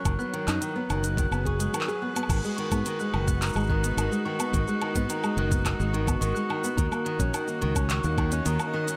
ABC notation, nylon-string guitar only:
X:1
M:4/4
L:1/16
Q:1/4=107
K:G#dor
V:1 name="Nylon-string guitar" clef=bass
D, B, D, D D, B, D, D D, B, G G, D, G B, B, | D, G, D, B, D, G, D, B, D, G, D, B, D, G, D, B, | D, G, D, B, D, G, D, B, D, G, D, B, D, G, D, B, | D, A, D, C D, A, D, C D, A, D, C D, A, D, C |]